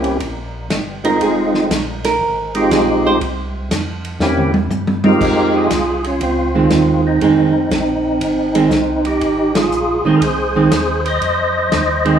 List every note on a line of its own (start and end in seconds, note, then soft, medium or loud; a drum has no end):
0.00 0.19 C2 medium
0.00 0.17 A#3 medium
0.00 0.17 C4 medium
0.00 0.17 C#4 soft
0.00 0.18 E4 medium
0.00 0.18 G4 medium
0.00 ride soft
0.20 0.69 A#1 medium
0.20 kick soft
0.20 ride medium
0.70 1.19 G1 medium
0.70 kick soft
0.70 snare medium
0.70 hi-hat pedal medium
0.70 ride medium
1.04 1.67 G#3 medium
1.04 1.68 C4 medium
1.04 1.68 D#4 medium
1.04 1.68 F4 medium
1.04 1.21 A#4 medium
1.04 ride medium
1.21 1.69 F1 medium
1.21 2.02 G#4 medium
1.21 kick soft
1.21 ride medium
1.54 snare soft
1.70 2.19 A#1 medium
1.70 kick soft
1.70 snare medium
1.70 hi-hat pedal medium
1.70 ride medium
2.04 2.67 A#4 loud
2.04 snare soft
2.04 ride medium
2.21 2.69 G#1 medium
2.21 kick soft
2.55 3.18 G#3 medium
2.55 3.18 C4 medium
2.55 3.18 D#4 medium
2.55 3.18 F4 medium
2.55 3.19 G4 medium
2.55 ride medium
2.71 3.19 A#1 loud
2.71 3.04 G#4 medium
2.71 kick soft
2.71 snare medium
2.71 hi-hat pedal medium
2.71 ride medium
3.07 3.16 C5 loud
3.21 3.69 C2 medium
3.21 kick soft
3.21 ride medium
3.70 4.19 F2 medium
3.70 kick soft
3.70 snare medium
3.70 hi-hat pedal medium
3.70 ride medium
4.05 ride soft
4.19 4.69 E2 medium
4.19 4.51 A#3 medium
4.19 4.51 C4 medium
4.19 4.52 C#4 medium
4.19 4.52 E4 medium
4.19 4.52 G4 medium
4.19 snare medium
4.37 mid tom medium
4.54 high tom medium
4.69 5.18 G2 medium
4.69 hi-hat pedal medium
4.69 high tom medium
4.87 high tom medium
5.04 5.67 G#3 medium
5.04 5.67 C4 medium
5.04 5.68 D#4 medium
5.04 5.55 F4 medium
5.04 5.68 G4 medium
5.04 5.52 A#4 loud
5.04 high tom loud
5.20 5.69 F2 medium
5.20 kick medium
5.20 crash medium
5.56 6.02 F4 medium
5.56 6.07 G#4 medium
5.70 6.19 C2 medium
5.70 kick soft
5.70 snare medium
5.70 hi-hat pedal medium
5.70 ride medium
6.04 6.21 C#4 medium
6.04 6.22 F4 medium
6.04 ride soft
6.20 6.69 C#2 medium
6.20 7.01 C4 medium
6.20 7.02 F4 medium
6.20 kick soft
6.20 ride medium
6.55 7.18 D#3 soft
6.55 7.18 G#3 medium
6.55 7.18 C4 medium
6.70 7.19 D#2 medium
6.70 kick soft
6.70 snare medium
6.70 hi-hat pedal soft
6.70 ride medium
7.07 9.02 C4 medium
7.07 9.05 D#4 medium
7.20 7.69 F2 medium
7.20 7.52 D#3 medium
7.20 7.52 G#3 medium
7.20 7.52 C4 medium
7.20 kick soft
7.20 ride medium
7.71 8.19 A#1 medium
7.71 kick soft
7.71 snare medium
7.71 hi-hat pedal medium
7.71 ride medium
8.20 8.69 G#1 medium
8.20 kick soft
8.20 ride medium
8.55 8.69 D#3 medium
8.55 8.70 G#3 medium
8.55 8.70 C4 medium
8.55 ride medium
8.70 9.19 C2 medium
8.70 kick soft
8.70 snare medium
8.70 hi-hat pedal medium
9.05 9.52 D#4 medium
9.05 9.57 G4 medium
9.05 ride soft
9.21 9.69 G#1 medium
9.21 kick soft
9.21 ride medium
9.55 10.02 F4 medium
9.55 10.05 G#4 loud
9.55 snare medium
9.55 ride medium
9.70 10.02 A#1 medium
9.70 hi-hat pedal soft
10.04 10.12 A#1 soft
10.04 10.20 D#3 medium
10.04 10.20 G#3 medium
10.04 10.21 C4 medium
10.04 10.16 G#4 medium
10.04 10.17 C5 medium
10.17 10.69 C2 medium
10.17 10.21 A#4 medium
10.21 11.01 G#4 medium
10.21 11.05 C5 loud
10.21 kick soft
10.21 ride medium
10.56 10.70 D#3 medium
10.56 10.70 G#3 medium
10.56 10.70 C4 medium
10.71 11.20 D#2 medium
10.71 kick soft
10.71 snare medium
10.71 hi-hat pedal soft
10.71 ride medium
11.05 12.19 C5 medium
11.05 12.19 D#5 loud
11.05 ride medium
11.21 11.70 F2 medium
11.21 kick soft
11.21 ride medium
11.71 12.19 D#2 medium
11.71 kick soft
11.71 snare medium
11.71 hi-hat pedal soft
11.71 ride medium
12.05 12.19 D#3 medium
12.05 12.19 G#3 medium
12.05 12.19 C4 medium
12.05 ride soft